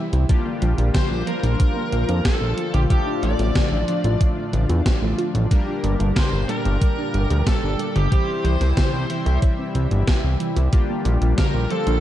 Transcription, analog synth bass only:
0.13 0.25 C2 medium
0.62 0.74 A#1 loud
0.78 0.91 A#1 medium
1.11 1.23 A#1 medium
1.43 1.56 A#1 medium
1.92 2.05 A#1 medium
2.09 2.21 F2 medium
2.41 2.54 A#1 medium
2.74 2.86 A#1 medium
3.23 3.35 A1 loud
3.39 3.51 A1 medium
3.72 3.84 A1 medium
4.04 4.17 A1 medium
4.53 4.66 A1 medium
4.70 4.82 E2 medium
5.02 5.14 A1 medium
5.34 5.47 A1 medium
5.84 5.96 G1 loud
6.00 6.12 G1 medium
6.33 6.45 G1 medium
6.65 6.78 G1 medium
7.14 7.26 G1 medium
7.30 7.43 D2 medium
7.63 7.75 G1 medium
7.96 8.08 G1 medium
8.44 8.57 C2 loud
8.61 8.73 C2 medium
8.94 9.06 C2 medium
9.26 9.38 C2 medium
9.75 9.87 C2 medium
9.91 10.04 G1 medium
10.24 10.36 C2 medium
10.56 10.69 C2 medium
11.05 11.18 A#1 loud
11.22 11.34 A#1 medium
11.54 11.67 A#1 medium
11.87 11.99 A#1 medium

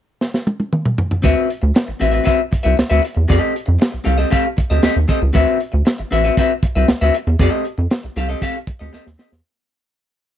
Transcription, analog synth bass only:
1.24 1.33 D2 medium
1.63 1.72 D2 loud
1.88 1.94 A1 soft
2.01 2.20 A1 medium
2.53 2.58 C2 soft
2.66 2.75 C2 medium
2.91 3.00 D2 medium
3.17 3.26 E2 medium
3.30 3.39 F2 medium
3.68 3.77 F2 loud
3.94 3.99 C2 soft
4.06 4.25 C2 medium
4.58 4.63 D2 soft
4.71 4.80 D2 medium
4.96 5.06 D#2 medium
5.22 5.31 C#2 medium
5.35 5.44 D2 medium
5.74 5.83 D2 medium
6.00 6.04 A1 soft
6.12 6.31 A1 medium
6.63 6.68 C2 soft
6.76 6.85 C2 medium
7.02 7.11 D2 loud
7.27 7.36 E2 medium
7.40 7.49 F2 loud
7.78 7.87 F2 medium
8.04 8.09 C2 soft
8.17 8.35 C2 medium
8.67 8.73 D2 soft
8.81 8.90 D2 medium
9.07 9.16 D#2 medium
9.33 9.41 E2 medium

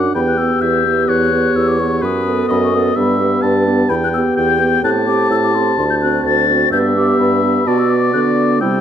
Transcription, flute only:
0.00 0.15 D6 medium
0.15 0.20 B5 medium
0.27 0.39 F#6 medium
0.38 0.63 E6 medium
0.61 1.07 G6 medium
1.08 1.58 F#6 medium
1.56 1.69 E6 medium
1.68 1.81 D6 medium
1.80 2.07 C#6 medium
2.05 2.52 D#6 medium
2.51 2.62 B5 medium
2.64 2.76 C#6 medium
2.75 2.98 D#6 medium
2.99 3.44 B5 medium
3.89 3.95 B5 medium
4.04 4.09 F#6 medium
4.14 4.20 E6 medium
4.37 4.83 G6 medium
4.84 4.90 F#6 medium
5.07 5.30 D6 medium
5.31 5.36 E6 medium
5.43 5.57 D6 medium
5.55 5.78 C6 medium
5.79 5.84 C6 medium
5.90 5.95 G6 medium
6.02 6.25 F#6 medium
6.25 6.72 A6 medium
6.72 6.78 G6 medium
6.97 7.19 D6 medium
7.20 7.66 B5 medium
7.66 7.80 A5 medium
7.78 7.92 E6 medium
7.90 8.13 D6 medium
8.13 8.19 F#6 medium
8.37 8.62 D6 medium
8.61 8.81 E6 medium

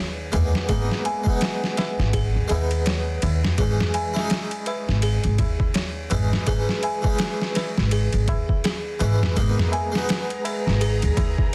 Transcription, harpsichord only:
0.00 0.28 G#3 medium
0.00 0.30 B3 medium
0.00 0.31 D#4 medium
0.32 0.65 G#3 medium
0.32 0.66 A#3 medium
0.32 0.66 B3 medium
0.32 0.67 D#4 medium
0.68 1.21 G#3 medium
0.68 1.22 A#3 medium
0.68 1.22 B3 medium
0.68 1.22 D#4 medium
1.24 2.45 G#3 medium
1.28 2.47 B3 medium
1.28 2.48 D#4 medium
2.48 3.54 G#3 medium
2.52 3.56 B3 medium
2.52 3.57 D#4 medium
3.58 4.11 E3 medium
3.58 4.11 G#3 medium
3.58 4.11 C#4 medium
3.58 4.12 D#4 medium
4.14 6.08 G#3 medium
4.14 6.07 E4 medium
4.18 6.09 C#4 medium
4.18 6.10 D#4 loud
6.10 6.43 E3 medium
6.10 6.44 G#3 medium
6.10 6.44 C#4 medium
6.10 6.45 D#4 loud
6.47 6.99 E3 medium
6.47 7.00 G#3 medium
6.47 7.00 C#4 medium
6.47 7.01 D#4 medium
7.02 8.23 E3 medium
7.02 8.24 G#3 medium
7.06 8.25 C#4 medium
7.06 8.26 D#4 medium
9.00 9.32 E3 medium
9.00 9.33 G#3 medium
9.00 9.33 C#4 medium
9.00 9.34 E4 medium
9.36 9.89 G#3 medium
9.36 9.89 A#3 medium
9.36 9.90 B3 medium
9.36 9.90 D#4 medium
9.92 11.55 G#3 medium
9.96 11.55 B3 medium
9.96 11.55 D#4 loud

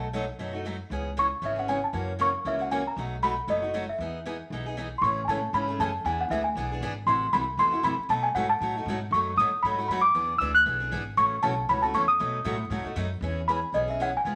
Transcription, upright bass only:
0.00 0.28 B1 medium
0.39 0.80 F#2 medium
0.90 1.31 C#2 medium
1.42 1.83 G#1 medium
1.93 2.34 F#2 medium
2.45 2.86 C#2 medium
2.96 3.38 B1 medium
3.47 3.89 F#1 medium
3.98 4.40 E2 medium
4.50 4.91 B1 medium
5.01 5.27 A1 medium
5.28 5.52 A2 medium
5.53 5.78 G#2 medium
5.79 6.04 F#2 medium
6.05 6.29 E2 medium
6.30 6.55 D2 medium
6.55 6.80 B1 medium
6.80 7.06 G#1 medium
7.06 7.32 A1 medium
7.33 7.57 C2 medium
7.57 7.82 E2 medium
7.83 7.97 F#2 medium
7.98 muted upright bass stroke soft
8.09 8.34 B2 medium
8.34 8.60 G#2 medium
8.60 8.85 A2 medium
8.86 9.10 G#2 medium
9.11 9.36 F#2 medium
9.36 9.50 A2 medium
9.52 muted upright bass stroke soft
9.64 9.88 G#2 medium
9.89 10.14 F#2 medium
10.15 10.39 E2 medium
10.40 10.65 D2 medium
10.66 10.91 B1 medium
10.92 11.16 G#1 medium
11.17 11.42 A1 medium
11.44 11.68 B1 medium
11.70 11.94 C#2 medium
11.94 12.19 E2 medium
12.20 12.44 B2 medium
12.45 12.69 A2 medium
12.70 12.84 G#2 medium
12.84 muted upright bass stroke soft
12.96 13.20 F#2 medium
13.21 13.62 E2 medium
13.73 14.14 B1 medium
14.25 14.35 C#2 medium

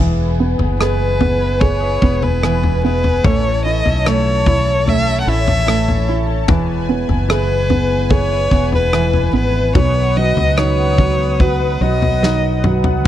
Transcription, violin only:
0.80 1.62 B4 medium
1.60 2.24 C#5 medium
2.23 2.84 B4 medium
2.84 3.27 B4 medium
3.26 3.65 C#5 medium
3.65 4.08 D#5 medium
4.07 4.90 C#5 medium
4.89 5.20 E5 loud
5.20 5.30 F#5 medium
5.28 6.09 E5 medium
7.33 8.08 B4 medium
8.14 8.70 C#5 medium
8.75 9.31 B4 medium
9.36 9.73 B4 medium
9.76 10.19 C#5 medium
10.17 10.59 D#5 medium
10.57 11.42 C#5 medium
11.41 11.83 B4 medium
11.82 12.64 D#5 medium

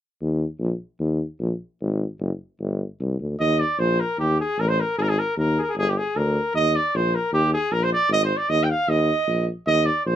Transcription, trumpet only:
3.40 3.62 D#5 medium
3.60 3.80 D5 medium
3.79 4.02 C5 medium
4.00 4.19 A#4 medium
4.19 4.37 G4 medium
4.40 4.61 G#4 medium
4.60 4.70 A#4 medium
4.69 4.82 C5 medium
4.80 4.97 A#4 medium
4.98 5.04 G#4 medium
5.02 5.10 A#4 medium
5.09 5.20 G#4 medium
5.19 5.37 A#4 medium
5.37 5.60 A#4 medium
5.58 5.63 G#4 medium
5.58 5.70 A#4 medium
5.69 5.77 G#4 medium
5.78 5.91 G#4 medium
5.89 5.99 G4 medium
5.97 6.18 G#4 medium
6.17 6.55 A#4 medium
6.55 6.77 D#5 loud
6.76 6.97 D5 medium
6.96 7.16 C5 medium
7.15 7.33 A#4 medium
7.34 7.51 G4 medium
7.53 7.74 G#4 medium
7.72 7.85 A#4 medium
7.83 7.92 C5 medium
7.93 8.10 D5 medium
8.13 8.24 D#5 loud
8.24 8.38 C5 medium
8.37 8.51 D5 medium
8.49 8.65 D#5 loud
8.64 8.71 G5 medium
8.70 8.91 F5 medium
8.89 9.48 D#5 medium
9.67 9.87 D#5 loud
9.85 10.05 D5 medium
10.06 10.16 C5 medium

